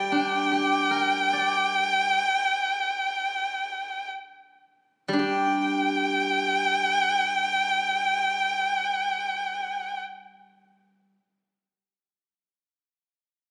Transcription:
Already playing: G3 G5
0.12 D4
0.51 G4
0.91 A#4
1.33 D5
5.08 G3
5.13 D4
5.19 G4 G5

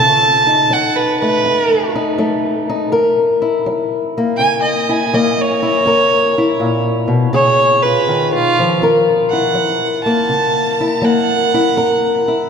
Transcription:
Already playing: B2 A4 A5
0.47 D#4
0.70 F#3 F#5
0.96 B4
1.20 A3 B4
1.45 F#2
1.95 D#4
2.18 F#3 A3
2.69 D#4
2.92 F#2 A#4
3.42 E4
3.66 F#3
4.18 A#3
4.37 C#3 G#5
4.62 D#5
4.89 E4 G#5
5.13 F#3 A#3 D#5
5.42 C#5
5.63 E4
5.86 F#2 A#4
6.38 E4
6.60 A#2
7.08 B2
7.33 C#3 G#4 C#5
7.83 F4 B4
8.08 D#3
8.34 F4
8.59 F3
8.82 F#2 A#4
9.30 E4 F#5
9.54 F#3
10.04 A#3 A5
10.29 C#3
10.81 E4
11.02 F#3 A#3 F#5
11.54 E4
11.77 F#2 A#4
12.28 E4

